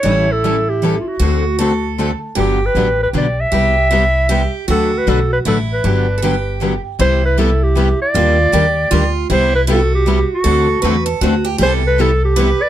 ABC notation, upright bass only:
X:1
M:3/4
L:1/8
Q:"Swing" 1/4=156
K:Clyd
V:1 name="Upright bass" clef=bass
A,,,6 | D,,6 | G,,,2 A,,,2 B,,,2 | C,,6 |
D,,2 B,,,2 A,,,2 | G,,,6 | C,,6 | _E,,2 E,,2 D,,2 |
C,,6 | D,,2 E,,2 D,,2 | C,,6 |]